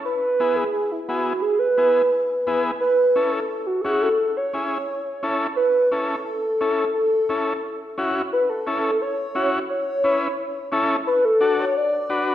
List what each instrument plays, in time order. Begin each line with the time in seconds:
0.05 soft synth lead B4
0.40 transistor combo organ B3 E4 G#4
0.56 soft synth lead G#4
0.73 soft synth lead G#4
0.91 soft synth lead E4
1.08 transistor combo organ B3 E4 G#4, soft synth lead F#4
1.42 soft synth lead G#4
1.59 soft synth lead B4
1.77 transistor combo organ B3 E4 G#4
2.47 transistor combo organ B3 E4 G#4
2.80 soft synth lead B4
3.16 transistor combo organ C#4 E4 A4
3.32 soft synth lead A4
3.49 soft synth lead A4
3.67 soft synth lead F#4
3.81 transistor combo organ C#4 E4, soft synth lead G#4 A4
3.85 transistor combo organ F#4
4.02 soft synth lead A4
4.37 soft synth lead C#5
4.53 transistor combo organ C#4 E4 G#4
5.23 transistor combo organ C#4 E4 A4
5.56 soft synth lead B4
5.91 transistor combo organ C#4 E4 A4
6.08 soft synth lead A4
6.25 soft synth lead A4
6.61 transistor combo organ C#4 E4 A4
6.94 soft synth lead A4
7.29 transistor combo organ C#4 E4 A4
7.98 transistor combo organ C#4 E4 F#4
8.33 soft synth lead B4
8.49 soft synth lead A4
8.67 transistor combo organ C#4 E4 A4
9.01 soft synth lead C#5
9.35 transistor combo organ C#4 E4 F#4
9.70 soft synth lead C#5
10.04 transistor combo organ C#4 E4 B4
10.72 transistor combo organ C#4 E4 A4
11.07 soft synth lead B4
11.25 soft synth lead A4
11.41 transistor combo organ D4 F#4 A4
11.60 soft synth lead C#5
11.77 soft synth lead D5
12.09 transistor combo organ D4 F#4 B4